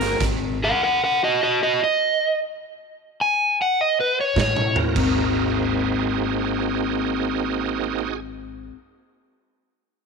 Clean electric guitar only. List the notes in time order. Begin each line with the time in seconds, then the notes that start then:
0.01 D#3 A#3
0.20 G#2 D#3
4.35 A2 E3
4.75 A2 E3
4.94 G#3 C4 F#4 A#4